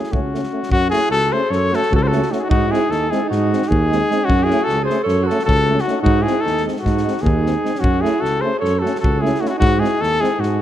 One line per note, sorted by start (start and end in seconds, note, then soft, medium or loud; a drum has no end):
0.00 0.17 E4 medium
0.00 0.14 G#4 medium
0.00 snare soft
0.11 0.44 C#2 medium
0.11 0.20 A3 medium
0.11 0.20 C#4 medium
0.11 0.71 F#4 medium
0.11 kick medium
0.15 0.73 C#4 medium
0.32 0.40 A3 medium
0.32 0.42 C#4 medium
0.32 snare soft
0.44 snare soft
0.52 0.60 A3 soft
0.52 0.59 C#4 soft
0.63 snare soft
0.70 0.92 F#2 loud
0.70 0.92 C#4 medium
0.70 0.89 F#4 loud
0.70 kick medium
0.90 1.00 A3 medium
0.90 1.01 C#4 medium
0.90 1.10 E4 medium
0.90 1.09 G#4 loud
0.90 snare soft
1.10 1.32 C#2 medium
1.10 1.34 F#4 medium
1.10 1.34 A4 loud
1.10 snare soft
1.31 1.39 A3 medium
1.31 1.42 C#4 medium
1.31 1.52 G#4 medium
1.31 1.52 C5 loud
1.50 1.73 F#2 loud
1.50 1.74 A4 medium
1.50 1.77 C#5 loud
1.50 snare soft
1.72 1.80 A3 medium
1.72 1.81 C#4 medium
1.72 1.91 F#4 medium
1.72 1.93 A4 loud
1.72 snare soft
1.83 snare soft
1.91 2.23 C#2 loud
1.91 2.00 F#4 medium
1.91 kick medium
1.95 2.04 G#4 medium
1.95 2.04 A4 loud
2.03 2.32 F#4 medium
2.03 2.09 C5 loud
2.08 2.33 A4 loud
2.13 2.20 A3 medium
2.13 2.21 C#4 medium
2.13 snare soft
2.23 snare soft
2.30 2.38 A3 medium
2.30 2.39 C#4 medium
2.30 2.37 D#4 medium
2.30 2.40 F#4 medium
2.30 snare soft
2.36 2.48 D#4 medium
2.36 2.41 E4 medium
2.36 2.43 G#4 medium
2.41 2.50 F#4 medium
2.49 2.72 G#2 loud
2.49 2.69 D#4 loud
2.49 2.73 F#4 loud
2.49 kick loud
2.67 2.79 G#3 medium
2.67 2.88 E4 loud
2.67 2.92 G#4 loud
2.72 2.79 C4 medium
2.72 snare soft
2.87 3.12 D#2 medium
2.87 3.09 D#4 medium
2.87 3.12 A4 loud
2.92 snare soft
3.08 3.19 G#3 medium
3.08 3.24 E4 medium
3.08 3.29 G#4 loud
3.12 3.20 C4 medium
3.12 snare soft
3.25 3.66 D#4 medium
3.30 3.52 G#2 loud
3.30 3.70 F#4 loud
3.30 snare soft
3.52 3.59 G#3 medium
3.52 3.61 C4 medium
3.52 snare soft
3.63 4.24 D#4 medium
3.63 snare soft
3.68 4.02 D#2 loud
3.68 4.26 G#4 loud
3.68 kick medium
3.91 3.98 G#3 medium
3.91 4.00 C4 medium
3.91 snare soft
4.10 4.17 G#3 medium
4.10 4.19 C4 medium
4.10 snare soft
4.23 4.47 C#4 loud
4.23 4.45 F#4 loud
4.28 4.50 F#2 loud
4.28 kick medium
4.44 4.64 E4 medium
4.44 4.65 G#4 loud
4.50 4.58 A3 medium
4.50 4.57 C#4 medium
4.50 snare soft
4.62 4.81 F#4 medium
4.62 4.84 A4 loud
4.67 4.90 C#2 medium
4.67 snare soft
4.82 5.03 G#4 medium
4.82 5.03 C5 loud
4.90 4.97 A3 medium
4.90 4.97 C#4 medium
4.90 snare soft
5.03 5.29 F#2 loud
5.03 5.25 A4 loud
5.03 5.28 C#5 loud
5.09 snare soft
5.23 5.42 F#4 medium
5.23 5.44 A4 loud
5.30 5.37 A3 medium
5.30 5.38 C#4 medium
5.30 snare soft
5.39 5.86 F#4 medium
5.39 snare soft
5.45 5.79 C#2 loud
5.45 5.82 A4 loud
5.49 kick medium
5.68 5.75 A3 medium
5.68 5.77 C#4 medium
5.79 6.01 F#4 loud
5.79 snare soft
5.84 5.95 A3 medium
5.84 5.95 C#4 medium
5.84 6.01 D#4 medium
5.84 snare soft
6.02 6.26 G#2 loud
6.02 6.23 D#4 loud
6.02 6.24 F#4 loud
6.06 kick loud
6.22 6.32 G#3 medium
6.22 6.44 E4 medium
6.22 6.42 G#4 loud
6.27 6.35 C4 medium
6.27 snare soft
6.41 6.65 D#4 medium
6.41 6.64 A4 loud
6.45 6.67 D#2 medium
6.45 snare soft
6.58 snare soft
6.64 6.72 G#3 medium
6.68 6.75 C4 medium
6.68 snare soft
6.77 7.23 F#4 medium
6.77 snare soft
6.84 7.06 G#2 loud
6.84 7.22 D#4 medium
6.84 kick medium
6.84 snare soft
6.98 snare soft
7.04 7.12 G#3 medium
7.04 7.15 C4 medium
7.08 snare soft
7.18 7.78 D#4 medium
7.18 7.81 G#4 loud
7.18 snare soft
7.22 7.55 D#2 loud
7.26 kick medium
7.43 7.51 G#3 soft
7.43 7.53 C4 medium
7.43 snare soft
7.62 7.70 G#3 medium
7.62 7.72 C4 medium
7.62 snare soft
7.75 8.04 C#4 medium
7.75 snare soft
7.80 8.03 F#2 loud
7.80 8.03 F#4 loud
7.84 kick medium
8.01 8.11 A3 medium
8.01 8.11 C#4 medium
8.01 8.21 E4 loud
8.01 8.23 G#4 loud
8.05 snare soft
8.20 8.44 C#2 medium
8.20 8.42 F#4 medium
8.20 8.42 A4 loud
8.25 snare soft
8.40 8.51 A3 medium
8.40 8.52 C#4 medium
8.40 8.60 G#4 medium
8.40 8.59 C5 loud
8.60 8.84 F#2 loud
8.60 8.84 A4 loud
8.60 8.80 C#5 medium
8.65 snare soft
8.79 9.01 F#4 medium
8.79 8.99 A4 loud
8.84 8.91 A3 medium
8.84 8.92 C#4 medium
8.84 snare soft
8.96 9.22 A4 loud
8.96 snare soft
9.02 9.34 C#2 loud
9.02 9.24 F#4 medium
9.02 kick medium
9.20 9.29 A3 medium
9.20 9.44 E4 medium
9.20 9.42 G#4 loud
9.25 9.31 C#4 medium
9.25 snare soft
9.35 snare soft
9.41 9.48 A3 medium
9.41 9.49 C#4 medium
9.41 9.48 D#4 medium
9.41 9.49 F#4 medium
9.46 9.51 D#4 medium
9.46 9.50 E4 medium
9.46 9.58 F#4 medium
9.46 snare soft
9.50 9.52 C#4 soft
9.56 9.82 G#2 loud
9.56 9.81 D#4 medium
9.56 9.81 F#4 loud
9.62 kick loud
9.79 9.86 G#3 medium
9.79 9.89 C4 medium
9.79 9.99 E4 medium
9.79 10.02 G#4 loud
9.84 snare soft
9.98 10.22 D#2 medium
9.98 10.21 D#4 medium
9.98 10.22 A4 loud
10.04 snare soft
10.19 10.28 G#3 medium
10.19 10.29 C4 medium
10.19 10.39 E4 medium
10.19 10.42 G#4 loud
10.24 snare soft
10.38 10.60 G#2 loud
10.38 10.62 D#4 medium
10.38 10.62 F#4 medium
10.43 snare soft